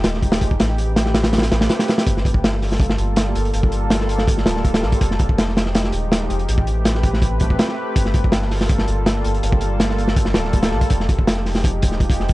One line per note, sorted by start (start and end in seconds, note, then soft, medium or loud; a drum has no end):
0.00 0.21 F3 medium
0.00 0.21 G#3 medium
0.00 0.20 D#4 medium
0.00 0.21 G4 medium
0.00 2.07 G5 medium
0.00 closed hi-hat medium
0.04 0.40 D#1 medium
0.04 snare loud
0.14 snare soft
0.22 kick medium
0.22 closed hi-hat medium
0.32 snare loud
0.32 closed hi-hat medium
0.41 0.58 F1 medium
0.41 kick medium
0.41 closed hi-hat medium
0.51 kick medium
0.59 1.50 A1 medium
0.59 1.49 A3 loud
0.59 1.49 C4 medium
0.59 1.49 G4 medium
0.59 1.49 B4 loud
0.59 snare loud
0.59 closed hi-hat medium
0.69 snare soft
0.78 closed hi-hat medium
0.96 snare loud
0.96 closed hi-hat medium
1.06 snare soft
1.14 snare loud
1.14 closed hi-hat medium
1.24 snare loud
1.24 closed hi-hat medium
1.33 snare medium
1.33 closed hi-hat medium
1.38 snare medium
1.38 closed hi-hat medium
1.42 snare loud
1.42 closed hi-hat medium
1.51 1.68 A1 medium
1.51 snare loud
1.51 closed hi-hat medium
1.61 snare loud
1.61 closed hi-hat medium
1.69 snare loud
1.69 closed hi-hat medium
1.79 snare loud
1.79 closed hi-hat medium
1.88 snare medium
1.88 closed hi-hat medium
1.98 snare loud
1.98 closed hi-hat medium
2.06 2.97 G1 loud
2.06 3.15 G3 medium
2.06 3.15 A#3 medium
2.06 3.15 F4 medium
2.06 3.15 A4 loud
2.06 kick loud
2.06 closed hi-hat medium
2.17 snare soft
2.25 kick medium
2.25 closed hi-hat medium
2.34 kick medium
2.44 snare loud
2.44 closed hi-hat medium
2.53 snare soft
2.62 snare soft
2.62 open hi-hat medium
2.72 snare soft
2.80 kick loud
2.80 closed hi-hat medium
2.89 snare medium
2.98 3.34 G1 medium
2.98 closed hi-hat medium
3.16 snare loud
3.16 closed hi-hat loud
3.35 3.52 G1 medium
3.35 closed hi-hat medium
3.45 closed hi-hat soft
3.54 4.45 G1 medium
3.54 4.44 G3 loud
3.54 4.44 A#3 medium
3.54 4.44 F4 medium
3.54 4.44 A4 loud
3.54 closed hi-hat medium
3.63 kick loud
3.72 closed hi-hat medium
3.90 snare loud
3.90 closed hi-hat medium
4.01 snare soft
4.09 closed hi-hat medium
4.18 snare medium
4.28 kick loud
4.28 closed hi-hat medium
4.38 snare soft
4.46 4.84 D1 medium
4.46 snare loud
4.46 closed hi-hat medium
4.56 snare soft
4.65 kick medium
4.65 closed hi-hat medium
4.74 snare loud
4.74 closed hi-hat medium
4.83 4.91 A1 loud
4.83 snare medium
4.92 kick medium
4.92 closed hi-hat medium
5.01 5.92 F1 loud
5.01 6.09 F3 medium
5.01 6.09 G#3 medium
5.01 6.10 D#4 medium
5.01 6.09 G4 loud
5.01 kick loud
5.01 closed hi-hat loud
5.11 snare soft
5.19 kick loud
5.19 closed hi-hat medium
5.29 kick medium
5.38 snare loud
5.38 closed hi-hat medium
5.48 snare soft
5.57 snare loud
5.57 closed hi-hat medium
5.66 snare medium
5.75 snare loud
5.75 closed hi-hat medium
5.84 snare medium
5.92 6.29 D#1 medium
5.92 closed hi-hat medium
6.12 snare loud
6.12 closed hi-hat loud
6.30 6.47 F1 medium
6.30 closed hi-hat medium
6.39 closed hi-hat soft
6.48 7.39 A1 loud
6.48 7.38 A3 loud
6.48 7.38 C4 medium
6.48 7.38 G4 medium
6.48 7.38 B4 loud
6.48 closed hi-hat loud
6.58 kick loud
6.67 closed hi-hat medium
6.85 snare loud
6.85 closed hi-hat medium
6.95 snare soft
7.03 kick loud
7.03 closed hi-hat medium
7.13 snare medium
7.22 kick medium
7.22 closed hi-hat medium
7.40 7.57 A1 medium
7.40 kick medium
7.40 closed hi-hat medium
7.50 kick medium
7.59 snare loud
7.59 closed hi-hat medium
7.68 snare soft
7.95 8.86 G1 loud
7.95 9.04 G3 medium
7.95 9.04 A#3 medium
7.95 9.04 F4 medium
7.95 9.04 A4 loud
7.95 kick loud
7.95 closed hi-hat medium
8.05 snare soft
8.14 kick medium
8.14 closed hi-hat medium
8.24 kick medium
8.32 snare loud
8.32 closed hi-hat medium
8.42 snare soft
8.51 snare soft
8.51 open hi-hat medium
8.61 snare medium
8.69 kick loud
8.69 closed hi-hat medium
8.78 snare medium
8.88 9.23 G1 medium
8.88 closed hi-hat medium
9.06 snare loud
9.06 closed hi-hat medium
9.24 9.41 G1 medium
9.24 closed hi-hat medium
9.34 closed hi-hat soft
9.43 10.34 G1 loud
9.43 10.33 G3 loud
9.43 10.33 A#3 medium
9.43 10.33 F4 medium
9.43 10.33 A4 loud
9.43 closed hi-hat medium
9.52 kick loud
9.61 closed hi-hat medium
9.80 snare loud
9.80 closed hi-hat medium
9.89 snare soft
9.98 closed hi-hat medium
10.08 snare medium
10.16 kick loud
10.16 closed hi-hat medium
10.25 snare medium
10.34 10.73 D1 medium
10.34 snare loud
10.34 closed hi-hat medium
10.44 snare soft
10.53 kick medium
10.53 closed hi-hat medium
10.63 snare loud
10.63 closed hi-hat medium
10.71 10.80 A1 loud
10.71 snare soft
10.81 kick medium
10.81 closed hi-hat medium
10.90 11.81 F1 loud
10.90 11.98 F3 medium
10.90 11.98 G#3 medium
10.90 11.98 D#4 medium
10.90 11.98 G4 loud
10.90 kick loud
10.90 closed hi-hat loud
11.00 snare soft
11.09 kick loud
11.09 closed hi-hat medium
11.19 kick medium
11.27 snare loud
11.27 closed hi-hat medium
11.36 snare soft
11.45 snare soft
11.45 open hi-hat medium
11.55 snare medium
11.64 kick loud
11.64 closed hi-hat medium
11.82 12.18 D#1 medium
11.82 kick loud
11.82 closed hi-hat medium
11.91 snare soft
12.00 kick medium
12.00 closed hi-hat medium
12.10 kick loud
12.10 closed hi-hat medium
12.19 12.33 F1 medium
12.19 snare soft
12.29 kick medium
12.29 closed hi-hat medium